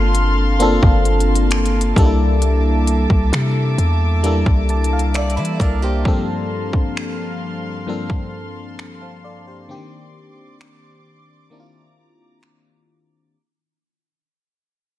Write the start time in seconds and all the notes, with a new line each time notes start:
Already playing: G1 A#3 C4 D4 F4 A4 F5 A5 C6
0.15 closed hi-hat
0.59 A#3 C4 D4 F4 A4, closed hi-hat
0.83 G1, kick
1.05 closed hi-hat
1.20 closed hi-hat
1.35 closed hi-hat
1.51 finger snap, closed hi-hat
1.66 closed hi-hat
1.81 closed hi-hat
1.96 C2 G3 A#3 D4 D#4 A4 E5 D6, kick, closed hi-hat
2.05 E4
2.42 closed hi-hat
2.87 closed hi-hat
3.10 C2, kick
3.33 C3, finger snap, closed hi-hat
3.78 E2, closed hi-hat
4.23 G3 A#3 D4 E4 A4, closed hi-hat
4.46 C2, kick
4.69 A5, closed hi-hat
4.84 closed hi-hat
4.93 F5
4.99 closed hi-hat
5.14 A4 D5 E5, finger snap, closed hi-hat
5.30 closed hi-hat
5.37 E3 E4 C5
5.45 closed hi-hat
5.60 C2 D4 A#4 D5 E5, kick, closed hi-hat
5.82 A#3 G4 C5
6.05 G2 F3 G3 A3 C4 D4 A4 F5 C6, kick
6.13 A#3
6.73 kick
6.97 finger snap
7.87 G2 F3 A#3 C4 D4 A4 A5
8.10 kick
8.79 finger snap
9.01 C5 F5
9.24 A4 D5
9.47 G4 C5
9.68 D3 A#3 C4 D4 G4 D5 D6
9.75 D#3
10.61 finger snap
11.50 D#3 A#3 C4 D4 E4 A#5
11.60 F4
12.43 finger snap